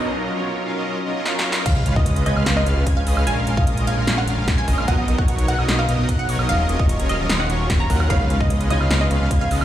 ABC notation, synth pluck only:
X:1
M:4/4
L:1/16
Q:1/4=149
K:Ebm
V:1 name="Synth pluck"
z16 | f2 z e2 z e2 z e2 z2 f2 z | a2 z f2 z f2 z g2 z2 a2 z | ^f2 z f2 z f2 z =f2 z2 ^f2 z |
f2 z e2 z e2 z g2 z2 b2 z | f2 z e2 z e2 z e2 z2 f2 z |]